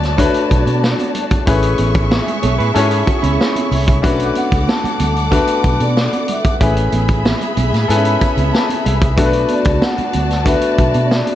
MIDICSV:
0, 0, Header, 1, 9, 480
1, 0, Start_track
1, 0, Tempo, 642398
1, 1096, Time_signature, 4, 2, 24, 8
1, 8481, End_track
2, 0, Start_track
2, 0, Title_t, "Vibraphone"
2, 0, Program_c, 0, 11
2, 3268, Note_on_c, 0, 78, 102
2, 3506, Note_on_c, 0, 81, 96
2, 3509, Note_off_c, 0, 78, 0
2, 3951, Note_off_c, 0, 81, 0
2, 3994, Note_on_c, 0, 81, 94
2, 4350, Note_on_c, 0, 74, 87
2, 4356, Note_off_c, 0, 81, 0
2, 4714, Note_off_c, 0, 74, 0
2, 4719, Note_on_c, 0, 76, 80
2, 4821, Note_off_c, 0, 76, 0
2, 4952, Note_on_c, 0, 80, 97
2, 5394, Note_off_c, 0, 80, 0
2, 7115, Note_on_c, 0, 74, 97
2, 7331, Note_off_c, 0, 74, 0
2, 7351, Note_on_c, 0, 78, 100
2, 7831, Note_on_c, 0, 76, 86
2, 7840, Note_off_c, 0, 78, 0
2, 8320, Note_off_c, 0, 76, 0
2, 8322, Note_on_c, 0, 74, 90
2, 8481, Note_off_c, 0, 74, 0
2, 8481, End_track
3, 0, Start_track
3, 0, Title_t, "String section"
3, 0, Program_c, 1, 48
3, 0, Note_on_c, 1, 66, 80
3, 0, Note_on_c, 1, 74, 90
3, 0, Note_on_c, 1, 81, 101
3, 1070, Note_off_c, 1, 74, 0
3, 1071, Note_off_c, 1, 66, 0
3, 1072, Note_off_c, 1, 81, 0
3, 1102, Note_on_c, 1, 85, 90
3, 1103, Note_on_c, 1, 68, 85
3, 1105, Note_on_c, 1, 76, 85
3, 2988, Note_off_c, 1, 85, 0
3, 2989, Note_off_c, 1, 68, 0
3, 2990, Note_off_c, 1, 76, 0
3, 3010, Note_on_c, 1, 78, 88
3, 3012, Note_on_c, 1, 69, 81
3, 3012, Note_on_c, 1, 86, 97
3, 4903, Note_off_c, 1, 78, 0
3, 4904, Note_off_c, 1, 69, 0
3, 4904, Note_off_c, 1, 86, 0
3, 4935, Note_on_c, 1, 68, 83
3, 4937, Note_on_c, 1, 83, 94
3, 4938, Note_on_c, 1, 76, 90
3, 6828, Note_off_c, 1, 68, 0
3, 6829, Note_off_c, 1, 76, 0
3, 6829, Note_off_c, 1, 83, 0
3, 6858, Note_on_c, 1, 66, 86
3, 6860, Note_on_c, 1, 74, 92
3, 6860, Note_on_c, 1, 81, 100
3, 8481, Note_off_c, 1, 66, 0
3, 8481, Note_off_c, 1, 74, 0
3, 8481, Note_off_c, 1, 81, 0
3, 8481, End_track
4, 0, Start_track
4, 0, Title_t, "Clean electric guitar"
4, 0, Program_c, 2, 27
4, 1813, Note_on_c, 2, 73, 70
4, 1818, Note_on_c, 2, 69, 59
4, 1928, Note_off_c, 2, 73, 0
4, 1931, Note_off_c, 2, 69, 0
4, 1931, Note_on_c, 2, 71, 77
4, 1937, Note_on_c, 2, 68, 70
4, 2047, Note_off_c, 2, 71, 0
4, 2050, Note_off_c, 2, 68, 0
4, 2053, Note_on_c, 2, 69, 71
4, 2058, Note_on_c, 2, 66, 64
4, 2165, Note_off_c, 2, 66, 0
4, 2168, Note_off_c, 2, 69, 0
4, 2168, Note_on_c, 2, 68, 79
4, 2172, Note_on_c, 2, 64, 58
4, 2286, Note_off_c, 2, 68, 0
4, 2288, Note_off_c, 2, 64, 0
4, 2291, Note_on_c, 2, 66, 72
4, 2407, Note_off_c, 2, 66, 0
4, 2408, Note_on_c, 2, 64, 70
4, 2412, Note_on_c, 2, 61, 61
4, 2982, Note_off_c, 2, 64, 0
4, 2984, Note_off_c, 2, 61, 0
4, 8481, End_track
5, 0, Start_track
5, 0, Title_t, "Grand piano"
5, 0, Program_c, 3, 0
5, 0, Control_c, 3, 64, 127
5, 0, Note_on_c, 3, 57, 85
5, 0, Note_on_c, 3, 62, 72
5, 0, Note_on_c, 3, 66, 76
5, 0, Note_on_c, 3, 71, 94
5, 0, Note_on_c, 3, 73, 80
5, 129, Note_off_c, 3, 57, 0
5, 129, Note_on_c, 3, 57, 82
5, 133, Note_off_c, 3, 73, 0
5, 133, Note_on_c, 3, 73, 83
5, 137, Note_off_c, 3, 62, 0
5, 137, Note_on_c, 3, 62, 81
5, 141, Note_off_c, 3, 66, 0
5, 141, Note_on_c, 3, 66, 77
5, 147, Note_off_c, 3, 71, 0
5, 147, Note_on_c, 3, 71, 94
5, 940, Note_off_c, 3, 57, 0
5, 942, Note_off_c, 3, 73, 0
5, 944, Note_off_c, 3, 62, 0
5, 946, Note_off_c, 3, 66, 0
5, 949, Note_off_c, 3, 71, 0
5, 1090, Note_on_c, 3, 57, 78
5, 1097, Note_on_c, 3, 61, 80
5, 1100, Note_on_c, 3, 64, 81
5, 1104, Note_on_c, 3, 68, 82
5, 1106, Control_c, 3, 64, 0
5, 1110, Note_on_c, 3, 71, 88
5, 1216, Control_c, 3, 64, 127
5, 1901, Note_off_c, 3, 57, 0
5, 1904, Note_off_c, 3, 61, 0
5, 1906, Note_off_c, 3, 64, 0
5, 1907, Note_off_c, 3, 68, 0
5, 1910, Note_off_c, 3, 71, 0
5, 2047, Note_on_c, 3, 69, 85
5, 2052, Note_on_c, 3, 61, 80
5, 2058, Note_on_c, 3, 64, 71
5, 2061, Note_on_c, 3, 68, 82
5, 2065, Note_on_c, 3, 73, 91
5, 2859, Note_off_c, 3, 69, 0
5, 2861, Note_off_c, 3, 61, 0
5, 2864, Note_off_c, 3, 64, 0
5, 2866, Note_off_c, 3, 68, 0
5, 2868, Note_off_c, 3, 73, 0
5, 3003, Note_on_c, 3, 57, 84
5, 3006, Note_on_c, 3, 61, 77
5, 3011, Note_on_c, 3, 62, 81
5, 3016, Note_on_c, 3, 66, 80
5, 3020, Note_on_c, 3, 71, 93
5, 3025, Control_c, 3, 64, 0
5, 3141, Control_c, 3, 64, 127
5, 3817, Note_off_c, 3, 57, 0
5, 3818, Note_off_c, 3, 61, 0
5, 3821, Note_off_c, 3, 62, 0
5, 3824, Note_off_c, 3, 66, 0
5, 3826, Note_off_c, 3, 71, 0
5, 3966, Note_on_c, 3, 57, 73
5, 3968, Note_on_c, 3, 59, 63
5, 3976, Note_on_c, 3, 62, 67
5, 3978, Note_on_c, 3, 66, 63
5, 3984, Note_on_c, 3, 71, 80
5, 4779, Note_off_c, 3, 57, 0
5, 4780, Note_off_c, 3, 59, 0
5, 4784, Note_off_c, 3, 62, 0
5, 4784, Note_off_c, 3, 66, 0
5, 4788, Note_off_c, 3, 71, 0
5, 4932, Note_on_c, 3, 57, 72
5, 4936, Note_on_c, 3, 61, 69
5, 4940, Note_on_c, 3, 64, 69
5, 4944, Control_c, 3, 64, 0
5, 4945, Note_on_c, 3, 68, 62
5, 4948, Note_on_c, 3, 71, 73
5, 5060, Control_c, 3, 64, 127
5, 5742, Note_off_c, 3, 57, 0
5, 5744, Note_off_c, 3, 61, 0
5, 5746, Note_off_c, 3, 64, 0
5, 5749, Note_off_c, 3, 68, 0
5, 5750, Note_off_c, 3, 71, 0
5, 5888, Note_on_c, 3, 69, 84
5, 5894, Note_on_c, 3, 59, 67
5, 5897, Note_on_c, 3, 64, 75
5, 5902, Note_on_c, 3, 80, 72
5, 5906, Note_on_c, 3, 71, 92
5, 5942, Note_on_c, 3, 61, 79
5, 5944, Note_off_c, 3, 59, 0
5, 6135, Note_on_c, 3, 83, 75
5, 6359, Note_off_c, 3, 83, 0
5, 6373, Note_on_c, 3, 81, 69
5, 6598, Note_off_c, 3, 81, 0
5, 6616, Note_on_c, 3, 76, 75
5, 6701, Note_off_c, 3, 69, 0
5, 6706, Note_off_c, 3, 64, 0
5, 6708, Note_off_c, 3, 80, 0
5, 6710, Note_off_c, 3, 71, 0
5, 6728, Note_off_c, 3, 61, 0
5, 6840, Note_off_c, 3, 76, 0
5, 6847, Note_on_c, 3, 57, 89
5, 6850, Note_on_c, 3, 59, 78
5, 6857, Note_on_c, 3, 62, 79
5, 6858, Note_on_c, 3, 66, 85
5, 6865, Note_on_c, 3, 69, 70
5, 6867, Control_c, 3, 64, 0
5, 6910, Note_off_c, 3, 69, 0
5, 6913, Note_on_c, 3, 71, 97
5, 7018, Control_c, 3, 64, 127
5, 7661, Note_off_c, 3, 57, 0
5, 7663, Note_off_c, 3, 59, 0
5, 7666, Note_off_c, 3, 62, 0
5, 7667, Note_off_c, 3, 66, 0
5, 7695, Note_off_c, 3, 71, 0
5, 7807, Note_on_c, 3, 57, 71
5, 7811, Note_on_c, 3, 59, 63
5, 7815, Note_on_c, 3, 62, 69
5, 7821, Note_on_c, 3, 66, 71
5, 7824, Note_on_c, 3, 71, 81
5, 8481, Note_off_c, 3, 57, 0
5, 8481, Note_off_c, 3, 59, 0
5, 8481, Note_off_c, 3, 62, 0
5, 8481, Note_off_c, 3, 66, 0
5, 8481, Note_off_c, 3, 71, 0
5, 8481, End_track
6, 0, Start_track
6, 0, Title_t, "Horn section"
6, 0, Program_c, 4, 61
6, 2054, Note_on_c, 4, 61, 87
6, 2054, Note_on_c, 4, 68, 84
6, 2055, Note_on_c, 4, 52, 80
6, 2207, Note_off_c, 4, 61, 0
6, 2207, Note_off_c, 4, 68, 0
6, 2208, Note_off_c, 4, 52, 0
6, 8481, End_track
7, 0, Start_track
7, 0, Title_t, "Fingered electric bass"
7, 0, Program_c, 5, 33
7, 0, Note_on_c, 5, 38, 85
7, 194, Note_off_c, 5, 38, 0
7, 383, Note_on_c, 5, 35, 88
7, 478, Note_off_c, 5, 35, 0
7, 499, Note_on_c, 5, 47, 87
7, 695, Note_off_c, 5, 47, 0
7, 1102, Note_on_c, 5, 33, 108
7, 1297, Note_off_c, 5, 33, 0
7, 1340, Note_on_c, 5, 33, 108
7, 1634, Note_off_c, 5, 33, 0
7, 1820, Note_on_c, 5, 35, 82
7, 1917, Note_off_c, 5, 35, 0
7, 1942, Note_on_c, 5, 45, 88
7, 2038, Note_off_c, 5, 45, 0
7, 2059, Note_on_c, 5, 44, 100
7, 2255, Note_off_c, 5, 44, 0
7, 2416, Note_on_c, 5, 37, 94
7, 2514, Note_off_c, 5, 37, 0
7, 2775, Note_on_c, 5, 36, 84
7, 3018, Note_off_c, 5, 36, 0
7, 3018, Note_on_c, 5, 35, 100
7, 3214, Note_off_c, 5, 35, 0
7, 3377, Note_on_c, 5, 37, 92
7, 3475, Note_off_c, 5, 37, 0
7, 3737, Note_on_c, 5, 38, 85
7, 4032, Note_off_c, 5, 38, 0
7, 4215, Note_on_c, 5, 35, 83
7, 4314, Note_off_c, 5, 35, 0
7, 4338, Note_on_c, 5, 47, 97
7, 4534, Note_off_c, 5, 47, 0
7, 4939, Note_on_c, 5, 33, 96
7, 5135, Note_off_c, 5, 33, 0
7, 5175, Note_on_c, 5, 33, 107
7, 5472, Note_off_c, 5, 33, 0
7, 5658, Note_on_c, 5, 35, 77
7, 5756, Note_off_c, 5, 35, 0
7, 5776, Note_on_c, 5, 45, 94
7, 5875, Note_off_c, 5, 45, 0
7, 5897, Note_on_c, 5, 44, 98
7, 6094, Note_off_c, 5, 44, 0
7, 6256, Note_on_c, 5, 37, 104
7, 6355, Note_off_c, 5, 37, 0
7, 6621, Note_on_c, 5, 36, 95
7, 6857, Note_off_c, 5, 36, 0
7, 6857, Note_on_c, 5, 35, 114
7, 7055, Note_off_c, 5, 35, 0
7, 7214, Note_on_c, 5, 37, 95
7, 7314, Note_off_c, 5, 37, 0
7, 7581, Note_on_c, 5, 38, 81
7, 7876, Note_off_c, 5, 38, 0
7, 8057, Note_on_c, 5, 35, 93
7, 8157, Note_off_c, 5, 35, 0
7, 8179, Note_on_c, 5, 47, 96
7, 8377, Note_off_c, 5, 47, 0
7, 8481, End_track
8, 0, Start_track
8, 0, Title_t, "Muted fingered electric bass strokes"
8, 3617, Note_on_c, 9, 29, 51
8, 3692, Note_off_c, 9, 29, 0
8, 7459, Note_on_c, 9, 29, 51
8, 7534, Note_off_c, 9, 29, 0
8, 8481, End_track
9, 0, Start_track
9, 0, Title_t, "Drums"
9, 24, Note_on_c, 9, 42, 44
9, 30, Note_on_c, 9, 38, 33
9, 98, Note_off_c, 9, 42, 0
9, 104, Note_off_c, 9, 38, 0
9, 137, Note_on_c, 9, 36, 93
9, 142, Note_on_c, 9, 42, 95
9, 212, Note_off_c, 9, 36, 0
9, 216, Note_off_c, 9, 42, 0
9, 255, Note_on_c, 9, 42, 53
9, 330, Note_off_c, 9, 42, 0
9, 382, Note_on_c, 9, 36, 87
9, 383, Note_on_c, 9, 42, 60
9, 456, Note_off_c, 9, 36, 0
9, 458, Note_off_c, 9, 42, 0
9, 499, Note_on_c, 9, 63, 73
9, 500, Note_on_c, 9, 42, 48
9, 573, Note_off_c, 9, 63, 0
9, 575, Note_off_c, 9, 42, 0
9, 626, Note_on_c, 9, 38, 102
9, 700, Note_off_c, 9, 38, 0
9, 738, Note_on_c, 9, 63, 71
9, 743, Note_on_c, 9, 42, 51
9, 813, Note_off_c, 9, 63, 0
9, 817, Note_off_c, 9, 42, 0
9, 856, Note_on_c, 9, 42, 71
9, 858, Note_on_c, 9, 64, 70
9, 931, Note_off_c, 9, 42, 0
9, 933, Note_off_c, 9, 64, 0
9, 976, Note_on_c, 9, 42, 57
9, 980, Note_on_c, 9, 36, 98
9, 1051, Note_off_c, 9, 42, 0
9, 1055, Note_off_c, 9, 36, 0
9, 1099, Note_on_c, 9, 42, 95
9, 1100, Note_on_c, 9, 36, 123
9, 1174, Note_off_c, 9, 42, 0
9, 1175, Note_off_c, 9, 36, 0
9, 1214, Note_on_c, 9, 42, 57
9, 1289, Note_off_c, 9, 42, 0
9, 1328, Note_on_c, 9, 42, 64
9, 1341, Note_on_c, 9, 62, 30
9, 1341, Note_on_c, 9, 63, 67
9, 1403, Note_off_c, 9, 42, 0
9, 1415, Note_off_c, 9, 62, 0
9, 1415, Note_off_c, 9, 63, 0
9, 1452, Note_on_c, 9, 42, 50
9, 1457, Note_on_c, 9, 36, 104
9, 1526, Note_off_c, 9, 42, 0
9, 1532, Note_off_c, 9, 36, 0
9, 1576, Note_on_c, 9, 63, 72
9, 1579, Note_on_c, 9, 38, 116
9, 1650, Note_off_c, 9, 63, 0
9, 1654, Note_off_c, 9, 38, 0
9, 1699, Note_on_c, 9, 64, 75
9, 1703, Note_on_c, 9, 42, 44
9, 1774, Note_off_c, 9, 64, 0
9, 1777, Note_off_c, 9, 42, 0
9, 1813, Note_on_c, 9, 42, 79
9, 1821, Note_on_c, 9, 62, 34
9, 1821, Note_on_c, 9, 63, 70
9, 1821, Note_on_c, 9, 64, 69
9, 1888, Note_off_c, 9, 42, 0
9, 1895, Note_off_c, 9, 62, 0
9, 1895, Note_off_c, 9, 63, 0
9, 1895, Note_off_c, 9, 64, 0
9, 1943, Note_on_c, 9, 42, 41
9, 2017, Note_off_c, 9, 42, 0
9, 2057, Note_on_c, 9, 42, 89
9, 2058, Note_on_c, 9, 62, 34
9, 2132, Note_off_c, 9, 42, 0
9, 2132, Note_off_c, 9, 62, 0
9, 2172, Note_on_c, 9, 42, 57
9, 2247, Note_off_c, 9, 42, 0
9, 2294, Note_on_c, 9, 42, 65
9, 2297, Note_on_c, 9, 36, 92
9, 2369, Note_off_c, 9, 42, 0
9, 2372, Note_off_c, 9, 36, 0
9, 2413, Note_on_c, 9, 63, 71
9, 2417, Note_on_c, 9, 42, 55
9, 2488, Note_off_c, 9, 63, 0
9, 2492, Note_off_c, 9, 42, 0
9, 2533, Note_on_c, 9, 62, 31
9, 2546, Note_on_c, 9, 38, 97
9, 2607, Note_off_c, 9, 62, 0
9, 2621, Note_off_c, 9, 38, 0
9, 2659, Note_on_c, 9, 63, 75
9, 2661, Note_on_c, 9, 42, 57
9, 2733, Note_off_c, 9, 63, 0
9, 2736, Note_off_c, 9, 42, 0
9, 2777, Note_on_c, 9, 62, 32
9, 2777, Note_on_c, 9, 64, 72
9, 2779, Note_on_c, 9, 46, 74
9, 2852, Note_off_c, 9, 62, 0
9, 2852, Note_off_c, 9, 64, 0
9, 2854, Note_off_c, 9, 46, 0
9, 2898, Note_on_c, 9, 36, 106
9, 2900, Note_on_c, 9, 42, 57
9, 2973, Note_off_c, 9, 36, 0
9, 2974, Note_off_c, 9, 42, 0
9, 3016, Note_on_c, 9, 62, 34
9, 3017, Note_on_c, 9, 36, 123
9, 3018, Note_on_c, 9, 42, 94
9, 3091, Note_off_c, 9, 62, 0
9, 3092, Note_off_c, 9, 36, 0
9, 3093, Note_off_c, 9, 42, 0
9, 3135, Note_on_c, 9, 42, 52
9, 3210, Note_off_c, 9, 42, 0
9, 3251, Note_on_c, 9, 42, 61
9, 3261, Note_on_c, 9, 62, 30
9, 3261, Note_on_c, 9, 63, 65
9, 3326, Note_off_c, 9, 42, 0
9, 3336, Note_off_c, 9, 62, 0
9, 3336, Note_off_c, 9, 63, 0
9, 3377, Note_on_c, 9, 36, 96
9, 3379, Note_on_c, 9, 42, 53
9, 3452, Note_off_c, 9, 36, 0
9, 3453, Note_off_c, 9, 42, 0
9, 3493, Note_on_c, 9, 62, 35
9, 3493, Note_on_c, 9, 63, 78
9, 3503, Note_on_c, 9, 38, 124
9, 3568, Note_off_c, 9, 62, 0
9, 3568, Note_off_c, 9, 63, 0
9, 3578, Note_off_c, 9, 38, 0
9, 3618, Note_on_c, 9, 64, 73
9, 3624, Note_on_c, 9, 42, 49
9, 3693, Note_off_c, 9, 64, 0
9, 3698, Note_off_c, 9, 42, 0
9, 3732, Note_on_c, 9, 42, 84
9, 3738, Note_on_c, 9, 62, 32
9, 3738, Note_on_c, 9, 63, 71
9, 3738, Note_on_c, 9, 64, 71
9, 3807, Note_off_c, 9, 42, 0
9, 3813, Note_off_c, 9, 62, 0
9, 3813, Note_off_c, 9, 63, 0
9, 3813, Note_off_c, 9, 64, 0
9, 3859, Note_on_c, 9, 42, 44
9, 3934, Note_off_c, 9, 42, 0
9, 3973, Note_on_c, 9, 36, 88
9, 3978, Note_on_c, 9, 62, 29
9, 3980, Note_on_c, 9, 42, 89
9, 4048, Note_off_c, 9, 36, 0
9, 4053, Note_off_c, 9, 62, 0
9, 4055, Note_off_c, 9, 42, 0
9, 4090, Note_on_c, 9, 42, 59
9, 4164, Note_off_c, 9, 42, 0
9, 4215, Note_on_c, 9, 36, 89
9, 4215, Note_on_c, 9, 42, 59
9, 4216, Note_on_c, 9, 62, 34
9, 4290, Note_off_c, 9, 36, 0
9, 4290, Note_off_c, 9, 42, 0
9, 4290, Note_off_c, 9, 62, 0
9, 4335, Note_on_c, 9, 42, 51
9, 4341, Note_on_c, 9, 63, 71
9, 4409, Note_off_c, 9, 42, 0
9, 4416, Note_off_c, 9, 63, 0
9, 4460, Note_on_c, 9, 38, 95
9, 4535, Note_off_c, 9, 38, 0
9, 4579, Note_on_c, 9, 42, 51
9, 4581, Note_on_c, 9, 63, 64
9, 4653, Note_off_c, 9, 42, 0
9, 4656, Note_off_c, 9, 63, 0
9, 4691, Note_on_c, 9, 42, 77
9, 4700, Note_on_c, 9, 64, 70
9, 4766, Note_off_c, 9, 42, 0
9, 4775, Note_off_c, 9, 64, 0
9, 4817, Note_on_c, 9, 36, 102
9, 4817, Note_on_c, 9, 42, 62
9, 4891, Note_off_c, 9, 42, 0
9, 4892, Note_off_c, 9, 36, 0
9, 4936, Note_on_c, 9, 42, 93
9, 4938, Note_on_c, 9, 36, 117
9, 4942, Note_on_c, 9, 62, 38
9, 5010, Note_off_c, 9, 42, 0
9, 5012, Note_off_c, 9, 36, 0
9, 5016, Note_off_c, 9, 62, 0
9, 5055, Note_on_c, 9, 42, 56
9, 5130, Note_off_c, 9, 42, 0
9, 5172, Note_on_c, 9, 42, 62
9, 5184, Note_on_c, 9, 62, 28
9, 5184, Note_on_c, 9, 63, 66
9, 5247, Note_off_c, 9, 42, 0
9, 5258, Note_off_c, 9, 62, 0
9, 5258, Note_off_c, 9, 63, 0
9, 5292, Note_on_c, 9, 42, 57
9, 5297, Note_on_c, 9, 36, 92
9, 5367, Note_off_c, 9, 42, 0
9, 5371, Note_off_c, 9, 36, 0
9, 5418, Note_on_c, 9, 62, 37
9, 5418, Note_on_c, 9, 63, 79
9, 5421, Note_on_c, 9, 38, 111
9, 5493, Note_off_c, 9, 62, 0
9, 5493, Note_off_c, 9, 63, 0
9, 5496, Note_off_c, 9, 38, 0
9, 5538, Note_on_c, 9, 42, 45
9, 5538, Note_on_c, 9, 64, 75
9, 5612, Note_off_c, 9, 42, 0
9, 5612, Note_off_c, 9, 64, 0
9, 5654, Note_on_c, 9, 42, 72
9, 5659, Note_on_c, 9, 63, 75
9, 5659, Note_on_c, 9, 64, 73
9, 5728, Note_off_c, 9, 42, 0
9, 5734, Note_off_c, 9, 63, 0
9, 5734, Note_off_c, 9, 64, 0
9, 5782, Note_on_c, 9, 42, 47
9, 5788, Note_on_c, 9, 38, 34
9, 5857, Note_off_c, 9, 42, 0
9, 5863, Note_off_c, 9, 38, 0
9, 5902, Note_on_c, 9, 42, 84
9, 5977, Note_off_c, 9, 42, 0
9, 6014, Note_on_c, 9, 42, 59
9, 6089, Note_off_c, 9, 42, 0
9, 6137, Note_on_c, 9, 42, 66
9, 6138, Note_on_c, 9, 36, 85
9, 6212, Note_off_c, 9, 42, 0
9, 6213, Note_off_c, 9, 36, 0
9, 6258, Note_on_c, 9, 42, 49
9, 6260, Note_on_c, 9, 63, 72
9, 6332, Note_off_c, 9, 42, 0
9, 6334, Note_off_c, 9, 63, 0
9, 6378, Note_on_c, 9, 62, 30
9, 6385, Note_on_c, 9, 38, 88
9, 6452, Note_off_c, 9, 62, 0
9, 6459, Note_off_c, 9, 38, 0
9, 6497, Note_on_c, 9, 63, 74
9, 6502, Note_on_c, 9, 42, 54
9, 6572, Note_off_c, 9, 63, 0
9, 6576, Note_off_c, 9, 42, 0
9, 6618, Note_on_c, 9, 64, 73
9, 6620, Note_on_c, 9, 42, 72
9, 6693, Note_off_c, 9, 64, 0
9, 6694, Note_off_c, 9, 42, 0
9, 6736, Note_on_c, 9, 42, 58
9, 6737, Note_on_c, 9, 36, 108
9, 6811, Note_off_c, 9, 42, 0
9, 6812, Note_off_c, 9, 36, 0
9, 6853, Note_on_c, 9, 42, 99
9, 6856, Note_on_c, 9, 36, 121
9, 6928, Note_off_c, 9, 42, 0
9, 6931, Note_off_c, 9, 36, 0
9, 6971, Note_on_c, 9, 42, 56
9, 7046, Note_off_c, 9, 42, 0
9, 7086, Note_on_c, 9, 42, 63
9, 7101, Note_on_c, 9, 63, 61
9, 7161, Note_off_c, 9, 42, 0
9, 7176, Note_off_c, 9, 63, 0
9, 7207, Note_on_c, 9, 42, 56
9, 7215, Note_on_c, 9, 36, 107
9, 7281, Note_off_c, 9, 42, 0
9, 7290, Note_off_c, 9, 36, 0
9, 7336, Note_on_c, 9, 62, 35
9, 7336, Note_on_c, 9, 63, 77
9, 7337, Note_on_c, 9, 38, 116
9, 7410, Note_off_c, 9, 62, 0
9, 7410, Note_off_c, 9, 63, 0
9, 7411, Note_off_c, 9, 38, 0
9, 7455, Note_on_c, 9, 42, 49
9, 7461, Note_on_c, 9, 64, 71
9, 7530, Note_off_c, 9, 42, 0
9, 7536, Note_off_c, 9, 64, 0
9, 7570, Note_on_c, 9, 42, 78
9, 7579, Note_on_c, 9, 62, 34
9, 7579, Note_on_c, 9, 63, 76
9, 7579, Note_on_c, 9, 64, 76
9, 7645, Note_off_c, 9, 42, 0
9, 7654, Note_off_c, 9, 62, 0
9, 7654, Note_off_c, 9, 63, 0
9, 7654, Note_off_c, 9, 64, 0
9, 7700, Note_on_c, 9, 42, 46
9, 7706, Note_on_c, 9, 38, 34
9, 7775, Note_off_c, 9, 42, 0
9, 7781, Note_off_c, 9, 38, 0
9, 7814, Note_on_c, 9, 36, 89
9, 7818, Note_on_c, 9, 42, 100
9, 7889, Note_off_c, 9, 36, 0
9, 7893, Note_off_c, 9, 42, 0
9, 7930, Note_on_c, 9, 42, 63
9, 8005, Note_off_c, 9, 42, 0
9, 8055, Note_on_c, 9, 42, 68
9, 8058, Note_on_c, 9, 36, 86
9, 8061, Note_on_c, 9, 62, 37
9, 8130, Note_off_c, 9, 42, 0
9, 8133, Note_off_c, 9, 36, 0
9, 8136, Note_off_c, 9, 62, 0
9, 8175, Note_on_c, 9, 42, 54
9, 8182, Note_on_c, 9, 63, 71
9, 8250, Note_off_c, 9, 42, 0
9, 8257, Note_off_c, 9, 63, 0
9, 8297, Note_on_c, 9, 62, 30
9, 8304, Note_on_c, 9, 38, 103
9, 8372, Note_off_c, 9, 62, 0
9, 8379, Note_off_c, 9, 38, 0
9, 8418, Note_on_c, 9, 63, 67
9, 8420, Note_on_c, 9, 42, 53
9, 8481, Note_off_c, 9, 42, 0
9, 8481, Note_off_c, 9, 63, 0
9, 8481, End_track
0, 0, End_of_file